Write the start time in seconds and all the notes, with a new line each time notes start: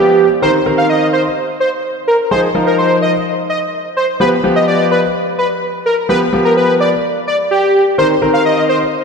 Already playing: F3 B3 G4
0.42 D#3 C4 A#4 C5
0.66 D#3 C4 A#4
0.78 F5
0.90 D#5
1.13 C5
1.60 C5
2.08 A#4
2.31 F3 D#4 G#4 C5
2.54 F3 D#4 A#4
2.67 A#4
2.79 C5
3.02 D#5
3.50 D#5
3.97 C5
4.20 F3 B3 G4 B4
4.44 F3 B3 G4
4.56 D#5
4.68 D5
4.91 B4
5.38 B4
5.86 A#4
6.09 F3 B3 G4 B4
6.33 F3 B3 G4
6.45 A#4
6.57 B4
6.80 D5
7.27 D5
7.51 G4
7.98 D#3 C4 A#4 C5
8.22 D#3 C4 A#4
8.34 F5
8.45 D#5
8.69 C5